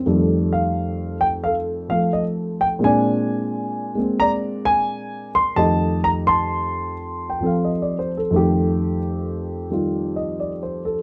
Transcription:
0.00 0.19 C4 soft
0.06 2.81 F2 medium
0.06 2.81 D#3 soft
0.06 2.82 G3 soft
0.06 1.90 A3 medium
0.53 1.17 F5 medium
1.21 1.26 G5 medium
1.44 2.78 A4 medium
1.44 1.54 F5 medium
1.89 2.81 F3 soft
1.89 2.82 A3 soft
1.89 2.11 F5 medium
2.13 2.23 D#5 medium
2.61 2.66 G5 medium
2.79 5.55 A#2 medium
2.79 3.94 G#3 soft
2.79 3.98 C4 soft
2.84 5.58 D4 medium
2.84 4.17 D5 medium
2.84 4.16 G#5 medium
3.95 5.56 G#3 soft
3.95 5.57 A#3 soft
3.95 5.58 C4 soft
4.20 5.54 D5 medium
4.20 4.30 A#5 medium
4.65 5.30 G#5 medium
5.35 5.55 C6 medium
5.56 8.29 F2 soft
5.56 8.31 D#3 soft
5.56 8.32 A3 soft
5.56 8.32 G4 medium
5.56 6.91 D#5 medium
5.56 6.00 A5 medium
6.04 6.09 A#5 medium
6.27 8.98 A5 medium
6.27 8.98 C6 medium
7.30 7.50 G5 soft
7.41 8.32 F3 soft
7.41 8.32 C4 soft
7.41 8.16 A4 soft
7.46 7.70 F5 soft
7.65 7.96 D#5 soft
7.82 8.11 D5 soft
7.99 8.19 C5 medium
8.17 8.40 A4 soft
8.31 11.02 F2 medium
8.31 9.68 D#3 soft
8.31 11.02 A3 soft
8.36 11.02 G4 medium
9.70 11.02 D#3 soft
9.70 11.02 G3 soft
9.70 11.02 F4 soft
10.16 10.52 D#5 soft
10.40 10.82 D5 soft
10.63 10.98 C5 soft
10.85 11.02 A4 soft

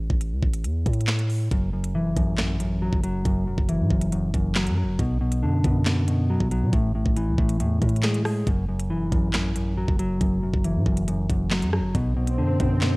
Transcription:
0.10 0.33 A1 loud
0.10 kick medium
0.21 closed hi-hat medium
0.32 0.42 C#2 loud
0.43 0.66 A1 loud
0.43 kick loud
0.53 closed hi-hat medium
0.64 0.85 E2 loud
0.64 closed hi-hat medium
0.86 1.49 A2 loud
0.86 kick medium
0.86 closed hi-hat medium
0.93 closed hi-hat medium
1.01 closed hi-hat medium
1.07 snare loud
1.07 clap medium
1.07 closed hi-hat medium
1.19 closed hi-hat medium
1.30 open hi-hat medium
1.51 1.96 F#1 loud
1.51 1.72 F#2 medium
1.51 kick loud
1.51 closed hi-hat medium
1.73 2.15 F#2 medium
1.84 closed hi-hat medium
1.95 2.07 E1 loud
1.95 3.04 E3 medium
2.06 2.16 F#1 loud
2.16 2.90 A1 loud
2.16 2.37 F#2 medium
2.16 kick medium
2.16 closed hi-hat medium
2.38 2.59 F#2 medium
2.38 snare loud
2.38 clap medium
2.38 closed hi-hat medium
2.60 3.24 F#2 medium
2.60 closed hi-hat medium
2.82 3.02 F#3 medium
2.93 3.24 F#1 loud
2.93 kick loud
3.04 4.12 F#3 medium
3.04 closed hi-hat medium
3.25 3.49 F#1 loud
3.25 3.46 F#2 medium
3.25 kick loud
3.25 closed hi-hat medium
3.47 3.57 E1 loud
3.47 3.89 F#2 medium
3.58 3.81 F#1 loud
3.58 kick medium
3.69 4.78 E3 medium
3.69 closed hi-hat medium
3.80 3.90 A2 loud
3.90 4.32 F#1 loud
3.90 4.11 F#2 medium
3.90 kick loud
4.01 closed hi-hat medium
4.12 4.33 F#2 medium
4.12 closed hi-hat medium
4.34 4.68 F#1 loud
4.34 4.99 F#2 medium
4.34 kick medium
4.34 closed hi-hat medium
4.55 4.76 F#3 medium
4.55 snare loud
4.55 clap medium
4.55 closed hi-hat medium
4.67 4.84 F#2 medium
4.67 closed hi-hat medium
4.77 4.99 F#3 medium
4.83 4.98 F#1 loud
4.99 5.44 B1 loud
4.99 5.20 B2 medium
4.99 kick loud
4.99 closed hi-hat medium
5.21 5.63 B2 medium
5.32 closed hi-hat medium
5.43 5.63 F#2 loud
5.43 6.29 D3 medium
5.64 6.37 F#2 loud
5.64 5.85 B2 medium
5.64 kick loud
5.64 closed hi-hat medium
5.86 6.07 B2 medium
5.86 snare loud
5.86 clap medium
5.86 closed hi-hat medium
6.08 6.73 B2 medium
6.08 closed hi-hat medium
6.30 6.50 F#3 medium
6.40 6.64 B1 loud
6.40 kick loud
6.51 6.73 F#3 medium
6.51 closed hi-hat medium
6.62 6.73 B2 loud
6.73 7.04 A1 loud
6.73 6.94 A2 loud
6.73 kick loud
6.73 closed hi-hat medium
6.95 7.37 A2 medium
7.06 7.29 A1 loud
7.06 kick medium
7.17 8.25 E3 medium
7.17 closed hi-hat medium
7.28 7.38 C#2 loud
7.38 7.62 A1 loud
7.38 7.59 A2 medium
7.38 kick loud
7.49 closed hi-hat medium
7.60 7.81 E2 medium
7.60 7.81 A2 medium
7.60 closed hi-hat medium
7.82 8.44 A2 loud
7.82 8.47 A2 medium
7.82 kick medium
7.82 closed hi-hat medium
7.89 closed hi-hat medium
7.96 closed hi-hat medium
8.03 8.24 G#3 medium
8.03 snare loud
8.03 clap medium
8.03 closed hi-hat medium
8.14 closed hi-hat medium
8.25 8.47 G#3 medium
8.25 cross-stick loud
8.25 open hi-hat medium
8.47 8.92 F#1 loud
8.47 8.67 F#2 medium
8.47 kick loud
8.47 closed hi-hat medium
8.69 9.11 F#2 medium
8.80 closed hi-hat medium
8.90 9.03 E1 loud
8.90 9.77 E3 medium
9.01 9.12 F#1 loud
9.12 9.85 A1 loud
9.12 9.32 F#2 medium
9.12 kick loud
9.12 closed hi-hat medium
9.33 9.54 F#2 medium
9.33 snare loud
9.33 clap medium
9.33 closed hi-hat medium
9.55 10.20 F#2 medium
9.55 closed hi-hat medium
9.77 9.98 F#3 medium
9.88 10.20 F#1 loud
9.88 kick loud
9.99 11.08 F#3 medium
9.99 closed hi-hat medium
10.21 10.44 F#1 loud
10.21 10.42 F#2 medium
10.21 kick loud
10.21 closed hi-hat medium
10.43 10.53 E1 loud
10.43 10.85 F#2 medium
10.54 10.77 F#1 loud
10.54 kick medium
10.64 11.73 E3 medium
10.64 closed hi-hat medium
10.75 10.86 A2 loud
10.86 11.28 F#1 loud
10.86 11.07 F#2 medium
10.86 kick loud
10.97 closed hi-hat medium
11.08 11.29 F#2 medium
11.08 closed hi-hat medium
11.30 11.64 F#1 loud
11.30 11.95 F#2 medium
11.30 kick medium
11.30 closed hi-hat medium
11.51 11.72 F#3 medium
11.51 snare loud
11.51 clap medium
11.51 closed hi-hat medium
11.62 11.80 F#2 loud
11.62 closed hi-hat medium
11.73 11.95 F#3 medium
11.73 cross-stick loud
11.79 11.94 F#1 loud
11.95 12.40 B1 loud
11.95 12.15 B2 medium
11.95 kick loud
11.95 closed hi-hat medium
11.95 swell medium
12.17 12.59 B2 medium
12.27 closed hi-hat medium
12.38 12.59 F#2 loud
12.38 12.97 D3 medium
12.60 12.97 F#2 loud
12.60 12.80 B2 medium
12.60 kick loud
12.60 closed hi-hat medium
12.81 12.97 B2 medium
12.81 snare loud
12.81 clap medium
12.81 closed hi-hat medium

